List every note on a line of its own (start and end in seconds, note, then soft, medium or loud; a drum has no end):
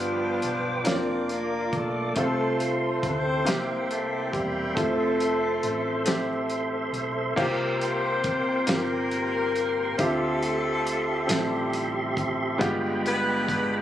0.00 0.39 G1 medium
0.00 0.82 G2 soft
0.00 0.87 F3 medium
0.00 0.55 B3 medium
0.00 0.83 B3 medium
0.00 0.56 D4 medium
0.00 0.84 D4 medium
0.00 0.56 F4 medium
0.00 0.87 F4 medium
0.00 0.57 G4 medium
0.00 0.85 B4 medium
0.00 0.85 G5 medium
0.00 2.14 D6 medium
0.42 0.83 B1 medium
0.42 closed hi-hat soft
0.84 1.69 F1 medium
0.84 1.85 A#3 medium
0.84 2.15 A#3 medium
0.84 0.92 C#4 soft
0.84 1.86 F4 medium
0.84 1.87 A#4 medium
0.84 2.15 D5 medium
0.84 snare medium
0.84 closed hi-hat medium
0.89 1.28 C4 medium
0.89 1.89 D4 medium
0.89 2.13 F4 medium
0.89 1.28 C5 medium
1.29 1.74 A#3 medium
1.29 1.74 A#4 medium
1.29 closed hi-hat soft
1.73 2.13 B1 medium
1.73 2.18 A3 medium
1.73 2.18 A4 medium
1.73 kick medium
1.73 closed hi-hat soft
2.15 2.99 C2 medium
2.15 3.42 C3 medium
2.15 3.16 A3 medium
2.15 3.16 C4 medium
2.15 3.17 F4 medium
2.15 3.46 A4 medium
2.15 3.18 A4 medium
2.15 3.46 C5 medium
2.15 7.34 C6 medium
2.15 kick medium
2.15 closed hi-hat medium
2.19 2.73 A3 medium
2.19 3.06 C4 medium
2.19 3.44 F4 medium
2.19 2.73 A4 medium
2.60 closed hi-hat soft
3.03 3.43 D2 medium
3.03 3.87 C4 medium
3.03 4.31 E4 medium
3.03 4.31 G4 medium
3.03 3.87 C5 medium
3.03 kick medium
3.03 closed hi-hat soft
3.45 4.73 C3 medium
3.45 4.46 A#3 medium
3.45 4.76 A#3 medium
3.45 4.47 C4 medium
3.45 4.47 E4 medium
3.45 4.48 G4 medium
3.45 7.34 E5 medium
3.45 4.76 G5 medium
3.45 snare medium
3.45 closed hi-hat medium
3.91 4.34 A3 medium
3.91 4.34 A4 medium
3.91 closed hi-hat soft
4.33 4.73 E1 medium
4.33 4.76 G3 medium
4.33 4.76 G4 medium
4.33 kick medium
4.33 closed hi-hat soft
4.75 5.60 F1 medium
4.75 5.78 F3 medium
4.75 5.76 A3 medium
4.75 6.50 A3 medium
4.75 6.46 C4 medium
4.75 5.77 C4 medium
4.75 6.46 E4 medium
4.75 5.77 E4 medium
4.75 6.50 A4 medium
4.75 7.35 A4 medium
4.75 7.34 C5 medium
4.75 kick medium
4.75 closed hi-hat medium
5.20 closed hi-hat soft
5.63 6.90 A1 medium
5.63 closed hi-hat soft
6.05 7.07 A3 medium
6.05 7.07 C4 medium
6.05 7.08 E4 medium
6.05 7.08 G4 medium
6.05 snare medium
6.05 closed hi-hat medium
6.49 closed hi-hat soft
6.93 7.33 B1 medium
6.93 closed hi-hat soft
7.36 8.64 C2 medium
7.36 8.64 C3 medium
7.36 8.38 A#3 medium
7.36 8.38 C4 medium
7.36 8.39 F4 medium
7.36 8.39 G4 medium
7.36 9.96 A#4 medium
7.36 9.96 G5 medium
7.36 12.57 C6 medium
7.36 kick loud
7.36 crash medium
7.81 8.66 C4 medium
7.81 8.70 F4 medium
7.81 8.69 G4 medium
7.81 8.66 C5 medium
7.81 closed hi-hat medium
8.24 kick medium
8.24 closed hi-hat soft
8.66 9.99 G1 medium
8.66 9.68 A#3 medium
8.66 9.69 C4 medium
8.66 9.69 F4 medium
8.66 9.70 G4 medium
8.66 snare loud
8.66 closed hi-hat medium
8.71 10.01 A#3 medium
8.71 9.97 F4 medium
8.71 9.96 G4 medium
8.71 10.01 A#4 medium
9.11 closed hi-hat soft
9.56 closed hi-hat soft
9.98 11.26 D2 medium
9.98 11.26 D3 medium
9.98 10.99 C4 medium
9.98 11.27 C4 medium
9.98 11.00 F4 medium
9.98 11.27 F4 medium
9.98 12.58 G4 medium
9.98 11.01 G4 medium
9.98 12.58 E5 medium
9.98 11.00 E5 medium
9.98 kick loud
9.98 closed hi-hat medium
10.02 11.28 A3 medium
10.02 11.28 A4 loud
10.43 closed hi-hat soft
10.87 closed hi-hat soft
11.27 12.57 A1 medium
11.27 12.31 F3 medium
11.27 12.29 C4 medium
11.27 12.57 C4 medium
11.27 12.30 E4 medium
11.27 12.57 E4 medium
11.27 12.31 A4 medium
11.27 closed hi-hat medium
11.31 12.29 G3 medium
11.31 12.29 G4 medium
11.31 snare loud
11.73 closed hi-hat medium
12.17 kick medium
12.17 closed hi-hat soft
12.58 13.82 G1 loud
12.58 13.82 G2 medium
12.58 13.61 G#3 medium
12.58 13.82 G#3 medium
12.58 13.61 B3 medium
12.58 13.62 F4 medium
12.58 13.63 G4 loud
12.58 13.82 G5 medium
12.58 13.82 B5 medium
12.58 kick loud
12.58 closed hi-hat medium
13.06 13.82 B3 loud
13.06 13.82 D4 medium
13.06 13.82 F4 medium
13.06 13.82 B4 loud
13.06 closed hi-hat soft
13.48 kick medium
13.48 closed hi-hat soft